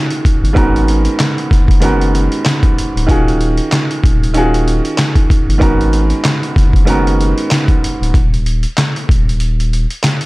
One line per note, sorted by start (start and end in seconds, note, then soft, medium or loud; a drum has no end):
0.00 0.54 D#3 medium
0.00 0.56 C#4 medium
0.00 0.58 F4 medium
0.00 0.56 F#4 medium
0.00 0.58 G#4 loud
0.10 closed hi-hat medium
0.25 kick loud
0.25 closed hi-hat medium
0.43 0.54 G1 medium
0.43 closed hi-hat medium
0.53 1.08 G#1 loud
0.53 1.41 G#2 medium
0.53 1.41 D#3 medium
0.53 1.42 B3 medium
0.53 1.42 C#4 medium
0.53 1.43 F#4 medium
0.53 kick loud
0.53 closed hi-hat medium
0.57 1.43 A#4 medium
0.76 closed hi-hat medium
0.88 closed hi-hat medium
1.05 closed hi-hat medium
1.19 snare loud
1.19 clap medium
1.19 closed hi-hat medium
1.38 closed hi-hat soft
1.51 2.28 F#1 loud
1.51 kick loud
1.51 snare soft
1.51 closed hi-hat medium
1.68 kick medium
1.68 closed hi-hat medium
1.80 2.68 G#2 medium
1.80 2.68 D#3 medium
1.80 2.69 B3 medium
1.80 2.69 C#4 medium
1.80 2.69 F#4 medium
1.80 closed hi-hat loud
1.85 2.70 A#4 medium
2.01 closed hi-hat soft
2.15 closed hi-hat medium
2.32 closed hi-hat soft
2.45 snare loud
2.45 clap loud
2.45 closed hi-hat medium
2.63 kick medium
2.63 closed hi-hat medium
2.78 closed hi-hat medium
2.96 3.07 D1 medium
2.96 closed hi-hat medium
3.07 3.60 D#1 loud
3.07 3.94 D#3 medium
3.07 3.95 C#4 medium
3.07 3.95 F4 medium
3.07 3.96 F#4 medium
3.07 kick loud
3.07 closed hi-hat medium
3.11 3.96 G#4 loud
3.28 closed hi-hat medium
3.41 closed hi-hat medium
3.58 closed hi-hat medium
3.72 snare loud
3.72 clap medium
3.72 closed hi-hat medium
3.91 closed hi-hat soft
4.04 4.81 D#1 medium
4.04 kick loud
4.04 closed hi-hat medium
4.23 closed hi-hat medium
4.34 5.21 D#3 medium
4.34 5.21 C#4 medium
4.34 5.22 F4 medium
4.34 5.22 F#4 medium
4.34 closed hi-hat loud
4.38 5.23 G#4 medium
4.54 closed hi-hat soft
4.68 closed hi-hat medium
4.85 closed hi-hat soft
4.98 snare loud
4.98 clap medium
4.98 closed hi-hat medium
5.15 kick medium
5.15 closed hi-hat medium
5.30 kick loud
5.30 closed hi-hat medium
5.48 5.59 G1 medium
5.48 closed hi-hat medium
5.58 6.13 G#1 loud
5.58 6.46 G#2 medium
5.58 6.46 D#3 medium
5.58 6.47 B3 medium
5.58 6.47 C#4 medium
5.58 6.48 F#4 medium
5.58 kick loud
5.58 closed hi-hat medium
5.62 6.48 A#4 medium
5.81 closed hi-hat medium
5.93 closed hi-hat medium
6.10 closed hi-hat soft
6.24 snare loud
6.24 clap loud
6.24 closed hi-hat medium
6.43 closed hi-hat soft
6.56 7.33 F#1 medium
6.56 kick loud
6.56 snare soft
6.56 closed hi-hat medium
6.73 kick medium
6.73 closed hi-hat medium
6.85 7.73 G#2 medium
6.85 7.73 D#3 medium
6.85 7.74 B3 medium
6.85 7.74 C#4 medium
6.85 7.75 F#4 medium
6.85 closed hi-hat loud
6.89 7.75 A#4 medium
7.07 closed hi-hat soft
7.21 closed hi-hat medium
7.38 closed hi-hat soft
7.51 snare loud
7.51 clap medium
7.51 closed hi-hat medium
7.68 kick medium
7.68 closed hi-hat medium
7.84 closed hi-hat medium
8.01 8.12 D1 medium
8.01 closed hi-hat medium
8.14 8.66 D#1 loud
8.14 kick loud
8.14 closed hi-hat medium
8.34 closed hi-hat medium
8.46 closed hi-hat medium
8.63 closed hi-hat medium
8.77 snare loud
8.77 clap loud
8.77 closed hi-hat medium
8.96 closed hi-hat soft
9.09 9.86 D#1 medium
9.09 kick loud
9.09 closed hi-hat medium
9.29 closed hi-hat medium
9.40 closed hi-hat loud
9.60 closed hi-hat soft
9.73 closed hi-hat medium
9.90 closed hi-hat soft
10.03 snare loud
10.03 clap medium
10.03 closed hi-hat medium
10.21 closed hi-hat medium